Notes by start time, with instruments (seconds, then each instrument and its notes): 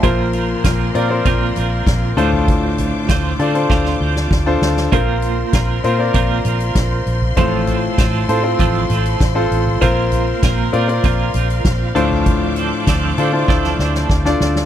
Already playing: string section F4 C6, grand piano E5 A5
0.03 fingered electric bass A#1, grand piano A#2 F3 C4 F4 A#4 C5, clean electric guitar A#3 C4 F4 A#4, string section A#4, kick, closed hi-hat
0.33 clean electric guitar C4 F4 A#4, closed hi-hat
0.64 fingered electric bass A#1, clean electric guitar A#3 C4 F4 A#4, kick, snare, closed hi-hat
0.95 fingered electric bass A#2, grand piano C4 F4 A#4 D5, clean electric guitar C4 F4 A#4, closed hi-hat
1.10 grand piano C4 F4 A#4 C5
1.25 fingered electric bass A#1, clean electric guitar A#3 C4 F4 A#4, kick, closed hi-hat
1.56 fingered electric bass A#1, clean electric guitar C4 F4 A#4, closed hi-hat, floor tom
1.86 fingered electric bass A#1, kick, snare, closed hi-hat
2.17 fingered electric bass D2, grand piano A2 D4 F4 A4 C5, clean electric guitar D3 A3 C4 F4 C5, string section C5 D6, closed hi-hat
2.33 floor tom
2.48 kick, closed hi-hat
2.78 closed hi-hat, floor tom
3.09 fingered electric bass D2, clean electric guitar A3 C4 F4 C5, kick, snare, closed hi-hat
3.39 fingered electric bass D3, clean electric guitar C4 F4 C5, grand piano D4 F4 A4 D5, closed hi-hat
3.54 grand piano D4 F4 A4 C5, closed hi-hat
3.70 fingered electric bass D2, clean electric guitar D3 A3 C4 F4 C5, kick, snare
3.85 snare
4.01 fingered electric bass D2, clean electric guitar C4 F4 C5
4.16 snare
4.31 fingered electric bass D2, kick, snare
4.46 grand piano D4 F4 A4 C5
4.62 fingered electric bass D2, snare
4.77 snare
4.92 fingered electric bass A#1, clean electric guitar A#3 C4 F4 A#4, grand piano C4 F4 A#4 C5, string section A#4 C6, kick, closed hi-hat
5.22 closed hi-hat
5.53 fingered electric bass A#1, clean electric guitar A#3 C4 F4 A#4, kick, snare, closed hi-hat
5.84 fingered electric bass A#2, grand piano C4 F4 A#4 C5, clean electric guitar C4 F4 A#4, closed hi-hat
5.99 grand piano C4 F4 A#4 D5
6.14 fingered electric bass A#1, clean electric guitar A#3 C4 F4 A#4, kick, closed hi-hat
6.45 fingered electric bass A#1, clean electric guitar C4 F4 A#4, closed hi-hat, floor tom
6.60 closed hi-hat
6.75 fingered electric bass A#1, kick, snare, closed hi-hat
7.06 fingered electric bass A#1, closed hi-hat
7.22 floor tom
7.37 fingered electric bass A1, grand piano A2 C4 F4 A4 C5, clean electric guitar A2 F3 A3 C4 F4 A4, string section A4, kick, closed hi-hat
7.67 clean electric guitar A3 C4 F4 A4, closed hi-hat, floor tom
7.98 fingered electric bass A1, clean electric guitar A3 C4 F4 A4, kick, snare, closed hi-hat
8.28 fingered electric bass A2, grand piano C4 F4 A4 C5, closed hi-hat
8.43 grand piano C4 F4 A4 C5
8.59 fingered electric bass A1, clean electric guitar A2 F3 A3 C4 F4 A4, kick, closed hi-hat
8.90 fingered electric bass A1, clean electric guitar A3 C4 F4 A4, closed hi-hat, floor tom
9.05 closed hi-hat
9.20 fingered electric bass A1, kick, snare, closed hi-hat
9.35 grand piano C4 F4 A4 C5
9.51 fingered electric bass A1, closed hi-hat
9.67 floor tom
9.81 fingered electric bass A#1, clean electric guitar A#3 C4 F4 A#4, grand piano C4 F4 A#4 C5, string section A#4 F5, kick, closed hi-hat
10.12 closed hi-hat, floor tom
10.43 fingered electric bass A#1, clean electric guitar A#3 C4 F4 A#4, kick, snare, closed hi-hat
10.73 fingered electric bass A#2, grand piano C4 F4 A#4 D5, clean electric guitar C4 F4 A#4, closed hi-hat
10.88 grand piano C4 F4 A#4 D5, closed hi-hat
11.04 fingered electric bass A#1, clean electric guitar A#3 C4 F4 A#4, kick, closed hi-hat
11.34 fingered electric bass A#1, clean electric guitar C4 F4 A#4, closed hi-hat, floor tom
11.50 closed hi-hat
11.65 fingered electric bass A#1, kick, snare, closed hi-hat
11.95 fingered electric bass D2, grand piano A2 D4 F4 A4 C5, clean electric guitar D3 F3 C4 D4 A4, string section C5 D6, closed hi-hat
12.11 floor tom
12.26 kick, closed hi-hat
12.56 clean electric guitar C4 D4 A4, closed hi-hat
12.87 fingered electric bass D2, clean electric guitar F3 C4 D4 A4, kick, snare, closed hi-hat
13.18 fingered electric bass D3, clean electric guitar C4 D4 A4, grand piano D4 F4 A4 C5, closed hi-hat
13.33 grand piano D4 E4 A4 C5
13.40 grand piano F4
13.48 fingered electric bass D2, clean electric guitar D3 F3 C4 D4 A4, kick, snare
13.64 snare
13.79 fingered electric bass D2, clean electric guitar C4 D4 A4, snare
13.95 snare
14.09 fingered electric bass D2, kick, snare
14.25 grand piano D4 F4 A4 D5, snare
14.40 fingered electric bass D2, snare
14.56 snare